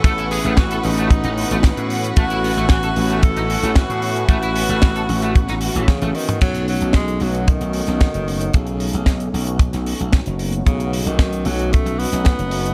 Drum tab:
CC |----------------|----------------|----------------|x---------------|
HH |xxoxxxoxxxoxxxox|xxoxxxoxxxoxxxox|xxoxxxoxxxoxxxox|xxoxxxoxxxoxxxox|
SD |----o-------o---|----o-------o---|----o----o--o---|----o------oo---|
T1 |----------------|----------------|------------oo--|----------------|
T2 |----------------|----------------|---------------o|----------------|
BD |o---o---o---o---|o---o---o---o---|o---o---o---o---|o---o---o---o---|

CC |----------------|----------------|
HH |xxoxxxoxxxoxxxox|xxoxxxoxxxoxxxox|
SD |----o----o--o---|----o------oo---|
T1 |----------------|----------------|
T2 |----------------|----------------|
BD |o---o---o---o---|o---o---o---o---|